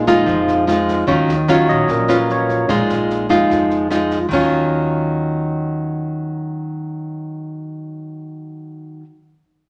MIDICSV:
0, 0, Header, 1, 5, 480
1, 0, Start_track
1, 0, Key_signature, -6, "minor"
1, 0, Tempo, 403497
1, 1285, Time_signature, 4, 2, 24, 8
1, 11527, End_track
2, 0, Start_track
2, 0, Title_t, "Tine electric piano"
2, 0, Program_c, 0, 4
2, 0, Control_c, 0, 64, 127
2, 94, Note_on_c, 0, 56, 41
2, 102, Note_on_c, 0, 63, 40
2, 107, Note_on_c, 0, 65, 47
2, 774, Note_off_c, 0, 56, 0
2, 778, Note_off_c, 0, 63, 0
2, 780, Note_off_c, 0, 65, 0
2, 1301, Control_c, 0, 64, 0
2, 1481, Control_c, 0, 64, 127
2, 1805, Note_on_c, 0, 73, 53
2, 1993, Note_on_c, 0, 54, 42
2, 1997, Note_on_c, 0, 61, 36
2, 2009, Note_on_c, 0, 65, 45
2, 2013, Note_on_c, 0, 75, 75
2, 2018, Note_off_c, 0, 73, 0
2, 2242, Note_off_c, 0, 75, 0
2, 2269, Note_on_c, 0, 70, 52
2, 2483, Note_on_c, 0, 71, 54
2, 2490, Note_off_c, 0, 70, 0
2, 2717, Note_off_c, 0, 71, 0
2, 2754, Note_on_c, 0, 73, 52
2, 3151, Note_off_c, 0, 54, 0
2, 3153, Note_off_c, 0, 61, 0
2, 3159, Note_off_c, 0, 65, 0
2, 3183, Note_on_c, 0, 56, 36
2, 3187, Note_off_c, 0, 73, 0
2, 3188, Note_on_c, 0, 63, 33
2, 3197, Note_on_c, 0, 65, 45
2, 3220, Control_c, 0, 64, 0
2, 3425, Control_c, 0, 64, 127
2, 3512, Note_off_c, 0, 56, 0
2, 3515, Note_off_c, 0, 63, 0
2, 3520, Note_off_c, 0, 65, 0
2, 4149, Note_on_c, 0, 56, 33
2, 4153, Note_on_c, 0, 63, 29
2, 4158, Note_on_c, 0, 65, 36
2, 4372, Note_off_c, 0, 56, 0
2, 4375, Note_off_c, 0, 63, 0
2, 4377, Note_off_c, 0, 65, 0
2, 5139, Control_c, 0, 64, 0
2, 11527, End_track
3, 0, Start_track
3, 0, Title_t, "Nylon-string guitar"
3, 0, Program_c, 1, 24
3, 0, Note_on_c, 1, 46, 52
3, 86, Note_on_c, 1, 56, 54
3, 89, Note_on_c, 1, 63, 63
3, 96, Note_on_c, 1, 65, 68
3, 306, Note_off_c, 1, 46, 0
3, 312, Note_on_c, 1, 53, 54
3, 767, Note_off_c, 1, 63, 0
3, 768, Note_off_c, 1, 56, 0
3, 772, Note_off_c, 1, 65, 0
3, 801, Note_on_c, 1, 56, 53
3, 805, Note_on_c, 1, 63, 51
3, 813, Note_on_c, 1, 65, 56
3, 1245, Note_off_c, 1, 56, 0
3, 1247, Note_off_c, 1, 63, 0
3, 1249, Note_off_c, 1, 65, 0
3, 1254, Note_off_c, 1, 53, 0
3, 1274, Note_on_c, 1, 54, 49
3, 1281, Note_on_c, 1, 51, 53
3, 1283, Note_on_c, 1, 61, 55
3, 1286, Note_on_c, 1, 65, 55
3, 1589, Note_off_c, 1, 54, 0
3, 1591, Note_off_c, 1, 61, 0
3, 1594, Note_off_c, 1, 65, 0
3, 1766, Note_on_c, 1, 54, 51
3, 1772, Note_on_c, 1, 61, 54
3, 1781, Note_on_c, 1, 65, 57
3, 2219, Note_off_c, 1, 51, 0
3, 2237, Note_on_c, 1, 46, 51
3, 2244, Note_off_c, 1, 54, 0
3, 2245, Note_off_c, 1, 61, 0
3, 2246, Note_off_c, 1, 65, 0
3, 2478, Note_on_c, 1, 54, 57
3, 2484, Note_on_c, 1, 61, 56
3, 2493, Note_on_c, 1, 65, 63
3, 3163, Note_off_c, 1, 54, 0
3, 3166, Note_off_c, 1, 61, 0
3, 3170, Note_off_c, 1, 65, 0
3, 3177, Note_off_c, 1, 46, 0
3, 3198, Note_on_c, 1, 46, 52
3, 3200, Note_on_c, 1, 56, 46
3, 3206, Note_on_c, 1, 63, 55
3, 3211, Note_on_c, 1, 65, 57
3, 3883, Note_off_c, 1, 56, 0
3, 3884, Note_off_c, 1, 63, 0
3, 3889, Note_off_c, 1, 65, 0
3, 3919, Note_on_c, 1, 56, 56
3, 3925, Note_on_c, 1, 63, 55
3, 3930, Note_on_c, 1, 65, 64
3, 4138, Note_off_c, 1, 46, 0
3, 4165, Note_on_c, 1, 53, 50
3, 4603, Note_off_c, 1, 56, 0
3, 4607, Note_off_c, 1, 63, 0
3, 4608, Note_off_c, 1, 65, 0
3, 4646, Note_on_c, 1, 56, 48
3, 4653, Note_on_c, 1, 63, 42
3, 4657, Note_on_c, 1, 65, 53
3, 4969, Note_off_c, 1, 56, 0
3, 4970, Note_off_c, 1, 63, 0
3, 4973, Note_off_c, 1, 65, 0
3, 5094, Note_off_c, 1, 53, 0
3, 5099, Note_on_c, 1, 51, 50
3, 5133, Note_on_c, 1, 54, 56
3, 5154, Note_on_c, 1, 61, 60
3, 5173, Note_on_c, 1, 65, 65
3, 10736, Note_off_c, 1, 51, 0
3, 10753, Note_off_c, 1, 54, 0
3, 10764, Note_off_c, 1, 61, 0
3, 10773, Note_off_c, 1, 65, 0
3, 11527, End_track
4, 0, Start_track
4, 0, Title_t, "Upright bass"
4, 0, Program_c, 2, 32
4, 91, Note_on_c, 2, 41, 79
4, 311, Note_off_c, 2, 41, 0
4, 324, Note_on_c, 2, 41, 98
4, 1237, Note_off_c, 2, 41, 0
4, 1291, Note_on_c, 2, 39, 81
4, 1400, Note_off_c, 2, 39, 0
4, 1527, Note_on_c, 2, 39, 79
4, 1972, Note_off_c, 2, 39, 0
4, 2012, Note_on_c, 2, 34, 78
4, 2232, Note_off_c, 2, 34, 0
4, 2245, Note_on_c, 2, 34, 86
4, 3157, Note_off_c, 2, 34, 0
4, 3207, Note_on_c, 2, 34, 79
4, 3317, Note_off_c, 2, 34, 0
4, 3450, Note_on_c, 2, 34, 74
4, 3894, Note_off_c, 2, 34, 0
4, 3929, Note_on_c, 2, 41, 75
4, 4150, Note_off_c, 2, 41, 0
4, 4174, Note_on_c, 2, 41, 88
4, 5082, Note_off_c, 2, 41, 0
4, 5124, Note_on_c, 2, 39, 73
4, 10701, Note_off_c, 2, 39, 0
4, 11527, End_track
5, 0, Start_track
5, 0, Title_t, "Drums"
5, 89, Note_on_c, 9, 36, 23
5, 91, Note_on_c, 9, 37, 55
5, 91, Note_on_c, 9, 38, 23
5, 208, Note_off_c, 9, 36, 0
5, 210, Note_off_c, 9, 37, 0
5, 210, Note_off_c, 9, 38, 0
5, 327, Note_on_c, 9, 36, 55
5, 327, Note_on_c, 9, 38, 23
5, 446, Note_off_c, 9, 36, 0
5, 446, Note_off_c, 9, 38, 0
5, 571, Note_on_c, 9, 38, 22
5, 690, Note_off_c, 9, 38, 0
5, 809, Note_on_c, 9, 37, 55
5, 809, Note_on_c, 9, 38, 22
5, 928, Note_off_c, 9, 37, 0
5, 928, Note_off_c, 9, 38, 0
5, 1050, Note_on_c, 9, 36, 23
5, 1052, Note_on_c, 9, 38, 24
5, 1169, Note_off_c, 9, 36, 0
5, 1171, Note_off_c, 9, 38, 0
5, 1290, Note_on_c, 9, 36, 56
5, 1291, Note_on_c, 9, 38, 23
5, 1408, Note_off_c, 9, 36, 0
5, 1410, Note_off_c, 9, 38, 0
5, 1533, Note_on_c, 9, 38, 24
5, 1652, Note_off_c, 9, 38, 0
5, 1766, Note_on_c, 9, 37, 53
5, 1766, Note_on_c, 9, 38, 22
5, 1885, Note_off_c, 9, 37, 0
5, 1885, Note_off_c, 9, 38, 0
5, 2009, Note_on_c, 9, 36, 21
5, 2010, Note_on_c, 9, 38, 22
5, 2128, Note_off_c, 9, 36, 0
5, 2129, Note_off_c, 9, 38, 0
5, 2242, Note_on_c, 9, 38, 22
5, 2248, Note_on_c, 9, 36, 58
5, 2361, Note_off_c, 9, 38, 0
5, 2367, Note_off_c, 9, 36, 0
5, 2487, Note_on_c, 9, 37, 57
5, 2487, Note_on_c, 9, 38, 22
5, 2606, Note_off_c, 9, 37, 0
5, 2606, Note_off_c, 9, 38, 0
5, 2730, Note_on_c, 9, 38, 21
5, 2849, Note_off_c, 9, 38, 0
5, 2966, Note_on_c, 9, 38, 23
5, 2967, Note_on_c, 9, 36, 25
5, 3085, Note_off_c, 9, 38, 0
5, 3086, Note_off_c, 9, 36, 0
5, 3197, Note_on_c, 9, 37, 56
5, 3197, Note_on_c, 9, 38, 22
5, 3207, Note_on_c, 9, 36, 55
5, 3316, Note_off_c, 9, 37, 0
5, 3316, Note_off_c, 9, 38, 0
5, 3326, Note_off_c, 9, 36, 0
5, 3444, Note_on_c, 9, 38, 23
5, 3563, Note_off_c, 9, 38, 0
5, 3692, Note_on_c, 9, 38, 21
5, 3811, Note_off_c, 9, 38, 0
5, 3931, Note_on_c, 9, 36, 22
5, 3932, Note_on_c, 9, 37, 54
5, 3932, Note_on_c, 9, 38, 21
5, 4050, Note_off_c, 9, 36, 0
5, 4051, Note_off_c, 9, 37, 0
5, 4051, Note_off_c, 9, 38, 0
5, 4170, Note_on_c, 9, 38, 22
5, 4171, Note_on_c, 9, 36, 51
5, 4289, Note_off_c, 9, 38, 0
5, 4290, Note_off_c, 9, 36, 0
5, 4408, Note_on_c, 9, 38, 20
5, 4527, Note_off_c, 9, 38, 0
5, 4647, Note_on_c, 9, 37, 50
5, 4647, Note_on_c, 9, 38, 20
5, 4766, Note_off_c, 9, 37, 0
5, 4766, Note_off_c, 9, 38, 0
5, 4886, Note_on_c, 9, 38, 22
5, 4889, Note_on_c, 9, 36, 24
5, 5005, Note_off_c, 9, 38, 0
5, 5008, Note_off_c, 9, 36, 0
5, 5121, Note_on_c, 9, 49, 54
5, 5126, Note_on_c, 9, 36, 63
5, 5240, Note_off_c, 9, 49, 0
5, 5245, Note_off_c, 9, 36, 0
5, 11527, End_track
0, 0, End_of_file